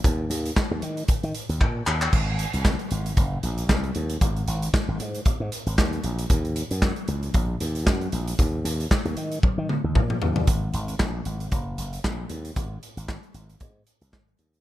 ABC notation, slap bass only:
X:1
M:4/4
L:1/16
Q:"Swing 16ths" 1/4=115
K:Ebdor
V:1 name="Slap bass" clef=bass
E,,2 E,,2 z E,, E,2 z E, z E,, B,,2 E,,2 | A,,,3 C,,2 z A,,,2 G,,,2 B,,,2 C,,2 E,,2 | A,,,2 A,,,2 z A,,, A,,2 z A,, z A,,, E,,2 B,,,2 | E,,3 G,,2 z D,,2 B,,,2 E,,2 G,,2 B,,,2 |
E,,2 E,,2 z E,, E,2 z E, z E,, B,,2 E,,2 | A,,,2 A,,,2 B,,,2 A,,,2 G,,,2 G,,,2 B,,,2 E,,2 | A,,,2 z A,,,2 z A,,,2 A,,2 z C,, A,,,2 E,,2 |]